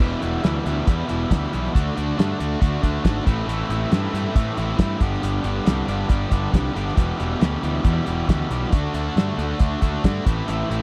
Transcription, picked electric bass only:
0.00 0.15 E1 medium
0.23 0.37 E1 medium
0.44 0.59 D2 medium
0.66 0.80 D2 medium
0.88 1.02 E2 medium
1.11 1.25 E1 medium
1.31 1.45 D2 medium
1.54 1.68 B1 medium
1.75 1.89 D2 medium
1.98 2.12 D2 medium
2.19 2.33 G2 medium
2.41 2.55 D2 medium
2.62 2.76 D2 medium
2.83 2.98 D2 medium
3.05 3.19 G#1 medium
3.27 3.41 A1 medium
3.47 3.62 A1 medium
3.69 3.84 A1 medium
3.92 4.07 G2 medium
4.13 4.28 G2 medium
4.36 4.50 A2 medium
4.58 4.72 A1 medium
4.79 4.93 G2 medium
5.01 5.15 G1 medium
5.23 5.38 G1 medium
5.44 5.59 G1 medium
5.67 5.81 C2 medium
5.88 6.03 G1 medium
6.10 6.25 G1 medium
6.32 6.46 G1 medium
6.53 6.68 C2 medium
6.76 6.90 G1 medium
6.97 7.12 E1 medium
7.21 7.35 E1 medium
7.42 7.56 D2 medium
7.63 7.78 D2 medium
7.84 7.99 E2 medium
8.08 8.22 E1 medium
8.29 8.43 D2 medium
8.50 8.65 B1 medium
8.72 8.87 D2 medium
8.94 9.08 D2 medium
9.16 9.30 G2 medium
9.38 9.52 D2 medium
9.60 9.74 D2 medium
9.82 9.96 D2 medium
10.05 10.19 G2 medium
10.26 10.40 A1 medium
10.48 10.62 A1 medium
10.70 10.82 A1 medium

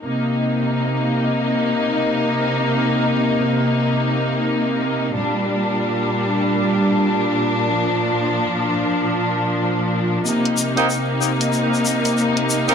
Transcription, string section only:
0.05 5.11 C3 medium
0.05 5.11 A#3 medium
0.05 5.11 D#4 medium
5.15 10.22 A#2 medium
5.15 7.68 G3 medium
5.15 10.22 D4 medium
7.71 10.23 F3 medium
10.26 12.75 C3 medium
10.26 12.75 A#3 medium
10.26 12.75 D#4 medium

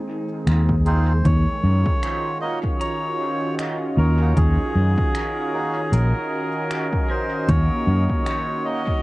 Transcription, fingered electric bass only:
0.47 1.22 D#2 medium
1.25 1.44 D#2 loud
1.64 1.83 F#2 medium
3.97 4.32 D#2 medium
4.37 4.56 D#2 loud
4.75 4.95 F#2 loud
5.92 6.12 A#1 medium
7.49 7.68 D#2 loud
7.87 8.07 F#2 loud

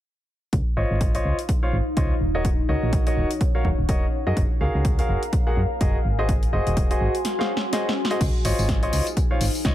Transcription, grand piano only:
0.77 1.11 F4 medium
0.77 1.11 C5 medium
0.77 1.11 C#5 medium
0.77 1.11 D#5 medium
1.15 1.36 F4 medium
1.15 1.36 C5 medium
1.15 1.36 C#5 medium
1.15 1.36 D#5 medium
1.63 1.75 F4 medium
1.63 1.75 C5 medium
1.63 1.75 C#5 medium
1.63 1.75 F5 medium
1.97 2.12 F4 medium
1.97 2.12 C5 medium
1.97 2.12 C#5 medium
1.97 2.12 D#5 medium
2.35 2.47 F#4 medium
2.35 2.47 A#4 medium
2.35 2.47 C#5 medium
2.35 2.47 D#5 medium
2.69 3.03 F#4 medium
2.69 3.03 A#4 medium
2.69 3.03 C#5 medium
2.69 3.03 D#5 medium
3.07 3.28 F#4 medium
3.07 3.28 A#4 medium
3.07 3.28 C#5 medium
3.07 3.28 D#5 medium
3.55 3.67 F#4 medium
3.55 3.67 A#4 medium
3.55 3.67 C#5 medium
3.55 3.67 F5 medium
3.89 4.04 F#4 medium
3.89 4.04 A#4 medium
3.89 4.04 C#5 medium
3.89 4.04 D#5 medium
4.27 4.39 F#4 medium
4.27 4.39 G#4 medium
4.27 4.39 A#4 medium
4.27 4.39 D#5 medium
4.61 4.95 F#4 medium
4.61 4.95 G#4 medium
4.61 4.95 A#4 medium
4.61 4.95 F5 medium
4.99 5.20 F#4 medium
4.99 5.20 G#4 medium
4.99 5.20 A#4 medium
4.99 5.20 F5 medium
5.47 5.59 F#4 medium
5.47 5.59 G#4 medium
5.47 5.59 A#4 medium
5.47 5.59 F#5 medium
5.81 5.96 F#4 medium
5.81 5.96 G#4 medium
5.81 5.96 A#4 medium
5.81 5.96 D#5 medium
6.19 6.31 F#4 medium
6.19 6.31 G#4 medium
6.19 6.31 C5 medium
6.19 6.31 D#5 medium
6.53 6.87 F#4 medium
6.53 6.87 G#4 medium
6.53 6.87 C5 medium
6.53 6.87 D#5 medium
6.91 7.12 F#4 medium
6.91 7.12 G#4 medium
6.91 7.12 C5 medium
6.91 7.12 D#5 medium
7.39 7.51 F#4 medium
7.39 7.51 G#4 medium
7.39 7.51 C5 medium
7.39 7.51 F5 medium
7.73 7.88 F#4 medium
7.73 7.88 G#4 medium
7.73 7.88 C5 medium
7.73 7.88 D#5 medium
8.11 8.20 F#4 medium
8.11 8.20 G#4 medium
8.11 8.20 C5 medium
8.11 8.20 D#5 medium
8.45 8.79 F4 medium
8.45 8.79 C5 medium
8.45 8.79 C#5 medium
8.45 8.79 D#5 medium
8.83 9.04 F4 medium
8.83 9.04 C5 medium
8.83 9.04 C#5 medium
8.83 9.04 D#5 medium
9.31 9.43 F4 medium
9.31 9.43 C5 medium
9.31 9.43 C#5 medium
9.31 9.43 F5 medium
9.65 9.75 F4 medium
9.65 9.75 C5 medium
9.65 9.75 C#5 medium
9.65 9.75 D#5 medium

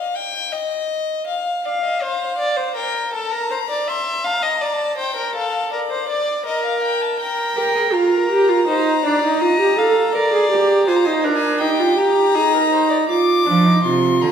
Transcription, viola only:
7.56 7.94 A#4 medium
7.93 8.29 F4 medium
8.30 8.50 G4 medium
8.49 8.67 F4 medium
8.67 9.04 D#4 medium
9.05 9.22 D4 medium
9.23 9.43 D#4 medium
9.41 9.59 F4 medium
9.60 9.78 G4 medium
9.78 10.16 A4 medium
10.15 10.33 A#4 medium
10.33 10.50 G#4 medium
10.51 10.89 G4 medium
10.87 11.07 F4 medium
11.06 11.26 D#4 medium
11.24 11.62 D4 medium
11.61 11.81 D#4 medium
11.80 11.97 F4 medium
11.98 12.36 G4 medium
12.35 13.08 D#4 medium
13.09 13.47 F4 medium
13.46 13.66 D4 medium
13.65 13.83 D#4 medium
13.84 14.32 F4 medium

